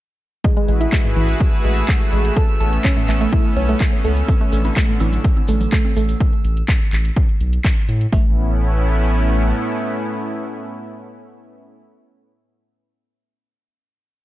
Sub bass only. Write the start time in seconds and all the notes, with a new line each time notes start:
0.68 A1
1.16 A1
1.64 A1
2.12 A1
2.60 A1
3.08 A1
3.56 B1
4.04 C#2
4.52 A1
5.00 A1
5.48 A1
5.96 A1
6.44 A1
6.92 A1
7.40 B1
7.88 A2
8.12 A1